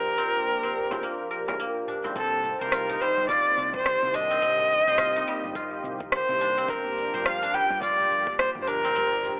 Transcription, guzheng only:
0, 0, Header, 1, 2, 480
1, 0, Start_track
1, 0, Key_signature, -3, "minor"
1, 0, Tempo, 566038
1, 1832, Time_signature, 4, 2, 24, 8
1, 7970, End_track
2, 0, Start_track
2, 0, Title_t, "Guzheng"
2, 0, Program_c, 0, 107
2, 0, Note_on_c, 0, 58, 75
2, 0, Note_on_c, 0, 60, 73
2, 0, Note_on_c, 0, 62, 75
2, 0, Note_on_c, 0, 65, 78
2, 147, Note_off_c, 0, 60, 0
2, 151, Note_on_c, 0, 60, 88
2, 532, Note_off_c, 0, 60, 0
2, 535, Note_on_c, 0, 60, 75
2, 770, Note_off_c, 0, 60, 0
2, 774, Note_on_c, 0, 60, 69
2, 869, Note_off_c, 0, 58, 0
2, 872, Note_on_c, 0, 58, 69
2, 1109, Note_on_c, 0, 70, 71
2, 1252, Note_off_c, 0, 70, 0
2, 1256, Note_on_c, 0, 70, 70
2, 1350, Note_off_c, 0, 58, 0
2, 1353, Note_on_c, 0, 58, 80
2, 1574, Note_off_c, 0, 65, 0
2, 1591, Note_off_c, 0, 62, 0
2, 1594, Note_on_c, 0, 62, 63
2, 1727, Note_off_c, 0, 60, 0
2, 1730, Note_on_c, 0, 60, 69
2, 1828, Note_off_c, 0, 60, 0
2, 1831, Note_on_c, 0, 60, 78
2, 2215, Note_on_c, 0, 72, 72
2, 2311, Note_on_c, 0, 65, 77
2, 2454, Note_on_c, 0, 63, 79
2, 2505, Note_off_c, 0, 62, 0
2, 2558, Note_on_c, 0, 55, 75
2, 2791, Note_off_c, 0, 65, 0
2, 2794, Note_on_c, 0, 65, 76
2, 3054, Note_off_c, 0, 70, 0
2, 3510, Note_on_c, 0, 62, 70
2, 3561, Note_off_c, 0, 63, 0
2, 3648, Note_off_c, 0, 60, 0
2, 3652, Note_on_c, 0, 60, 78
2, 3743, Note_off_c, 0, 60, 0
2, 3747, Note_on_c, 0, 60, 81
2, 3894, Note_off_c, 0, 72, 0
2, 4080, Note_off_c, 0, 58, 0
2, 4132, Note_on_c, 0, 72, 74
2, 4225, Note_off_c, 0, 65, 0
2, 4228, Note_on_c, 0, 65, 76
2, 4376, Note_on_c, 0, 63, 79
2, 4427, Note_off_c, 0, 62, 0
2, 4463, Note_off_c, 0, 55, 0
2, 4473, Note_on_c, 0, 55, 75
2, 4708, Note_off_c, 0, 65, 0
2, 4711, Note_on_c, 0, 65, 82
2, 5434, Note_on_c, 0, 62, 75
2, 5485, Note_off_c, 0, 63, 0
2, 5573, Note_off_c, 0, 60, 0
2, 5576, Note_on_c, 0, 60, 78
2, 5670, Note_off_c, 0, 60, 0
2, 5674, Note_on_c, 0, 60, 77
2, 5714, Note_off_c, 0, 55, 0
2, 5811, Note_off_c, 0, 72, 0
2, 6053, Note_on_c, 0, 72, 75
2, 6150, Note_off_c, 0, 65, 0
2, 6153, Note_on_c, 0, 65, 78
2, 6295, Note_off_c, 0, 62, 0
2, 6298, Note_on_c, 0, 62, 81
2, 6393, Note_on_c, 0, 55, 75
2, 6632, Note_off_c, 0, 65, 0
2, 6636, Note_on_c, 0, 65, 79
2, 7350, Note_off_c, 0, 62, 0
2, 7354, Note_on_c, 0, 62, 70
2, 7498, Note_off_c, 0, 60, 0
2, 7501, Note_on_c, 0, 60, 74
2, 7590, Note_off_c, 0, 60, 0
2, 7594, Note_on_c, 0, 60, 75
2, 7731, Note_off_c, 0, 72, 0
2, 7970, Note_off_c, 0, 55, 0
2, 7970, Note_off_c, 0, 60, 0
2, 7970, Note_off_c, 0, 62, 0
2, 7970, Note_off_c, 0, 65, 0
2, 7970, End_track
0, 0, End_of_file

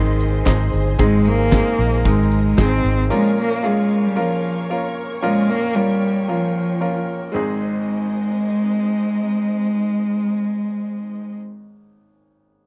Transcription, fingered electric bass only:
0, 0, Header, 1, 2, 480
1, 0, Start_track
1, 0, Key_signature, -4, "major"
1, 0, Tempo, 528634
1, 902, Time_signature, 4, 2, 24, 8
1, 11501, End_track
2, 0, Start_track
2, 0, Title_t, "Fingered electric bass"
2, 0, Program_c, 0, 33
2, 0, Note_on_c, 0, 32, 81
2, 388, Note_off_c, 0, 32, 0
2, 425, Note_on_c, 0, 32, 72
2, 647, Note_off_c, 0, 32, 0
2, 668, Note_on_c, 0, 31, 73
2, 888, Note_off_c, 0, 31, 0
2, 903, Note_on_c, 0, 32, 90
2, 1472, Note_off_c, 0, 32, 0
2, 1624, Note_on_c, 0, 34, 73
2, 1846, Note_off_c, 0, 34, 0
2, 1866, Note_on_c, 0, 32, 78
2, 2311, Note_off_c, 0, 32, 0
2, 2346, Note_on_c, 0, 32, 74
2, 2567, Note_off_c, 0, 32, 0
2, 2582, Note_on_c, 0, 32, 65
2, 2805, Note_off_c, 0, 32, 0
2, 11501, End_track
0, 0, End_of_file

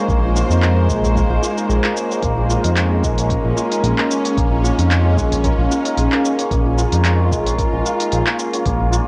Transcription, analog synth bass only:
0, 0, Header, 1, 2, 480
1, 0, Start_track
1, 0, Key_signature, -5, "minor"
1, 0, Tempo, 535714
1, 75, Time_signature, 4, 2, 24, 8
1, 8134, End_track
2, 0, Start_track
2, 0, Title_t, "Analog synth bass"
2, 0, Program_c, 0, 38
2, 75, Note_on_c, 0, 34, 99
2, 385, Note_off_c, 0, 34, 0
2, 442, Note_on_c, 0, 41, 89
2, 795, Note_on_c, 0, 34, 78
2, 808, Note_off_c, 0, 41, 0
2, 1104, Note_off_c, 0, 34, 0
2, 1165, Note_on_c, 0, 34, 81
2, 1243, Note_off_c, 0, 34, 0
2, 1517, Note_on_c, 0, 34, 76
2, 1609, Note_off_c, 0, 34, 0
2, 1994, Note_on_c, 0, 34, 95
2, 2304, Note_off_c, 0, 34, 0
2, 2366, Note_on_c, 0, 41, 90
2, 2715, Note_on_c, 0, 34, 79
2, 2728, Note_off_c, 0, 41, 0
2, 3024, Note_off_c, 0, 34, 0
2, 3086, Note_on_c, 0, 34, 84
2, 3163, Note_off_c, 0, 34, 0
2, 3433, Note_on_c, 0, 34, 86
2, 3527, Note_off_c, 0, 34, 0
2, 3917, Note_on_c, 0, 34, 97
2, 4225, Note_off_c, 0, 34, 0
2, 4285, Note_on_c, 0, 41, 91
2, 4633, Note_on_c, 0, 34, 74
2, 4646, Note_off_c, 0, 41, 0
2, 4943, Note_off_c, 0, 34, 0
2, 5000, Note_on_c, 0, 34, 90
2, 5080, Note_off_c, 0, 34, 0
2, 5353, Note_on_c, 0, 34, 86
2, 5447, Note_off_c, 0, 34, 0
2, 5832, Note_on_c, 0, 34, 91
2, 6143, Note_off_c, 0, 34, 0
2, 6204, Note_on_c, 0, 41, 92
2, 6555, Note_on_c, 0, 34, 77
2, 6568, Note_off_c, 0, 41, 0
2, 6865, Note_off_c, 0, 34, 0
2, 6922, Note_on_c, 0, 34, 91
2, 7001, Note_off_c, 0, 34, 0
2, 7277, Note_on_c, 0, 34, 85
2, 7369, Note_off_c, 0, 34, 0
2, 7754, Note_on_c, 0, 34, 99
2, 8064, Note_off_c, 0, 34, 0
2, 8134, End_track
0, 0, End_of_file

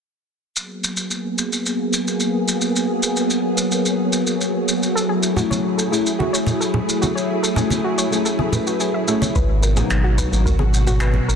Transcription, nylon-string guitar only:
0, 0, Header, 1, 2, 480
1, 0, Start_track
1, 0, Tempo, 550459
1, 478, Time_signature, 4, 2, 24, 8
1, 9901, End_track
2, 0, Start_track
2, 0, Title_t, "Nylon-string guitar"
2, 0, Program_c, 0, 24
2, 4670, Note_on_c, 0, 54, 77
2, 4675, Note_on_c, 0, 57, 75
2, 4681, Note_on_c, 0, 61, 68
2, 4687, Note_on_c, 0, 64, 66
2, 4691, Note_on_c, 0, 68, 85
2, 5126, Note_off_c, 0, 54, 0
2, 5128, Note_off_c, 0, 57, 0
2, 5131, Note_off_c, 0, 61, 0
2, 5134, Note_off_c, 0, 64, 0
2, 5136, Note_off_c, 0, 68, 0
2, 5144, Note_on_c, 0, 54, 80
2, 5149, Note_on_c, 0, 57, 73
2, 5155, Note_on_c, 0, 61, 65
2, 5160, Note_on_c, 0, 64, 75
2, 5167, Note_on_c, 0, 66, 82
2, 5282, Note_off_c, 0, 54, 0
2, 5285, Note_off_c, 0, 57, 0
2, 5288, Note_off_c, 0, 61, 0
2, 5290, Note_off_c, 0, 64, 0
2, 5294, Note_off_c, 0, 66, 0
2, 6581, Note_on_c, 0, 54, 78
2, 6588, Note_on_c, 0, 57, 82
2, 6591, Note_on_c, 0, 61, 72
2, 6596, Note_on_c, 0, 64, 74
2, 6602, Note_on_c, 0, 68, 88
2, 7041, Note_off_c, 0, 54, 0
2, 7044, Note_off_c, 0, 57, 0
2, 7046, Note_off_c, 0, 61, 0
2, 7048, Note_off_c, 0, 64, 0
2, 7052, Note_off_c, 0, 68, 0
2, 7063, Note_on_c, 0, 54, 73
2, 7069, Note_on_c, 0, 57, 65
2, 7075, Note_on_c, 0, 61, 68
2, 7078, Note_on_c, 0, 64, 67
2, 7082, Note_on_c, 0, 68, 80
2, 7402, Note_off_c, 0, 54, 0
2, 7405, Note_off_c, 0, 57, 0
2, 7407, Note_off_c, 0, 61, 0
2, 7409, Note_off_c, 0, 64, 0
2, 7411, Note_off_c, 0, 68, 0
2, 7431, Note_on_c, 0, 54, 76
2, 7435, Note_on_c, 0, 57, 70
2, 7440, Note_on_c, 0, 61, 76
2, 7444, Note_on_c, 0, 64, 72
2, 7453, Note_on_c, 0, 71, 84
2, 7886, Note_off_c, 0, 54, 0
2, 7888, Note_off_c, 0, 57, 0
2, 7890, Note_off_c, 0, 61, 0
2, 7894, Note_off_c, 0, 64, 0
2, 7895, Note_off_c, 0, 71, 0
2, 7906, Note_on_c, 0, 54, 87
2, 7909, Note_on_c, 0, 57, 83
2, 7917, Note_on_c, 0, 61, 79
2, 7922, Note_on_c, 0, 64, 78
2, 7925, Note_on_c, 0, 68, 97
2, 8044, Note_off_c, 0, 54, 0
2, 8046, Note_off_c, 0, 57, 0
2, 8050, Note_off_c, 0, 61, 0
2, 8051, Note_off_c, 0, 64, 0
2, 8054, Note_off_c, 0, 68, 0
2, 8503, Note_on_c, 0, 54, 77
2, 8510, Note_on_c, 0, 58, 73
2, 8514, Note_on_c, 0, 59, 74
2, 8520, Note_on_c, 0, 63, 72
2, 8526, Note_on_c, 0, 68, 87
2, 8963, Note_off_c, 0, 54, 0
2, 8964, Note_off_c, 0, 58, 0
2, 8968, Note_off_c, 0, 59, 0
2, 8970, Note_off_c, 0, 63, 0
2, 8973, Note_off_c, 0, 68, 0
2, 8993, Note_on_c, 0, 54, 77
2, 8997, Note_on_c, 0, 58, 70
2, 9001, Note_on_c, 0, 59, 68
2, 9005, Note_on_c, 0, 63, 73
2, 9011, Note_on_c, 0, 66, 85
2, 9127, Note_off_c, 0, 54, 0
2, 9129, Note_off_c, 0, 58, 0
2, 9131, Note_off_c, 0, 59, 0
2, 9133, Note_off_c, 0, 63, 0
2, 9136, Note_off_c, 0, 66, 0
2, 9901, End_track
0, 0, End_of_file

